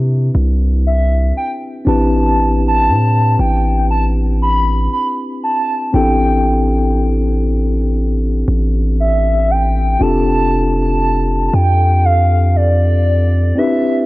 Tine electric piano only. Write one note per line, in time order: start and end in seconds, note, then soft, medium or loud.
0.00 1.31 C4 medium
0.00 1.32 D4 medium
0.00 1.32 E4 medium
0.00 1.33 G4 medium
0.00 1.33 B4 medium
1.85 5.89 C4 medium
1.85 5.89 D4 medium
1.85 5.90 E4 medium
1.85 5.90 G4 medium
1.85 5.91 B4 medium
5.93 9.96 C4 medium
5.93 9.96 D4 medium
5.93 9.97 E4 medium
5.93 9.97 G4 medium
5.93 9.98 A4 medium
9.99 13.52 C4 medium
9.99 13.52 D4 medium
9.99 13.53 F4 medium
9.99 13.53 G4 medium
9.99 13.53 A4 medium
13.55 14.06 C4 medium
13.55 14.06 D4 medium
13.55 13.64 D#4 soft
13.55 14.06 G4 medium
13.55 14.06 B4 medium
13.63 14.06 E4 medium